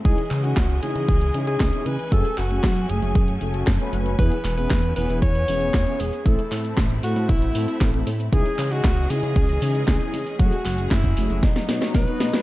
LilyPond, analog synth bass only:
\new Staff \with { instrumentName = "Analog synth bass" } { \clef bass \time 4/4 \key cis \minor \tempo 4 = 116 cis,16 r16 cis8 cis,8 cis16 cis16 cis,8 cis8 cis,16 r16 cis16 r16 | fis,16 r16 fis,,8 fis,8 fis,,16 fis,,16 fis,8 fis,,8 fis,16 r16 fis,,8 | e,16 r16 e,,8 e,8 e,,16 e,,16 e,8 e,,8 e,16 r16 e,,16 r16 | a,,16 r16 a,8 a,,8 a,16 a,16 a,,8 a,16 r16 a,,8 a,8 |
cis,16 r16 cis8 cis,8 cis16 cis16 cis,8 cis8 cis,16 r16 cis16 r16 | fis,16 r16 fis,,8 fis,8 fis,,16 fis,,16 b,,16 r16 b,16 r16 b,,16 r16 b,16 r16 | }